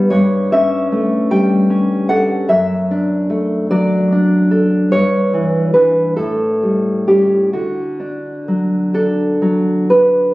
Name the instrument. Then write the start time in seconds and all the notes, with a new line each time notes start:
nylon-string guitar
0.10 G2 C#5
0.52 C#4 E5
0.92 A3
1.31 G3 G5
1.70 C#4
2.09 A4 F#5
2.49 F#2 E5
2.91 D4
3.30 A3
3.71 F#3 D5
4.12 D4
4.51 A4
4.92 G2 C#5
5.34 E3
5.74 E3 D4 B4
6.17 A2 A4
6.63 G3
7.08 G3 C#4 G4
7.53 D3 F#4
8.00 D4
8.48 F#3
8.94 D4 A4
9.42 F#3
9.90 D4 B4